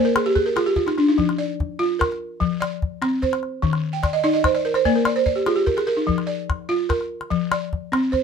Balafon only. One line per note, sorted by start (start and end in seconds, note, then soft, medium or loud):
0.00 0.36 A#3 medium
0.00 0.14 C5 medium
0.05 0.24 A#4 medium
0.16 0.34 G#4 medium
0.26 0.45 G4 medium
0.35 0.55 G#4 medium
0.46 0.65 A#4 medium
0.56 0.75 F4 medium
0.56 0.75 G#4 medium
0.66 0.85 G4 medium
0.76 0.96 F4 medium
0.86 1.06 D#4 medium
0.98 1.17 D4 medium
1.08 1.27 D#4 medium
1.18 1.59 F3 medium
1.38 2.00 D5 medium
1.79 2.20 F4 medium
1.99 2.61 A#4 medium
2.40 2.81 F3 medium
2.61 3.22 D5 medium
3.02 3.43 C4 medium
3.22 3.84 C5 medium
3.62 4.04 D#3 medium
3.93 4.12 G5 medium
4.03 4.22 D5 medium
4.13 4.32 D#5 medium
4.24 4.65 D#4 medium
4.24 4.43 D5 medium
4.33 4.53 D#5 medium
4.45 4.64 C5 medium
4.55 4.74 D5 medium
4.65 4.84 A#4 medium
4.75 4.94 C5 medium
4.85 5.27 A#3 medium
4.85 5.05 D5 medium
4.96 5.15 A#4 medium
5.06 5.25 D5 medium
5.16 5.35 C5 medium
5.26 5.45 D5 medium
5.36 5.54 G4 medium
5.46 5.88 F4 medium
5.46 5.66 G#4 medium
5.56 5.76 G4 medium
5.66 5.86 A#4 medium
5.77 5.96 G#4 medium
5.87 6.07 A#4 medium
5.97 6.17 D#4 medium
6.07 6.49 F3 medium
6.27 6.89 D5 medium
6.69 7.10 F4 medium
6.89 7.51 A#4 medium
7.30 7.72 F3 medium
7.51 8.13 D5 medium
7.92 8.23 C4 medium
8.12 8.23 C5 medium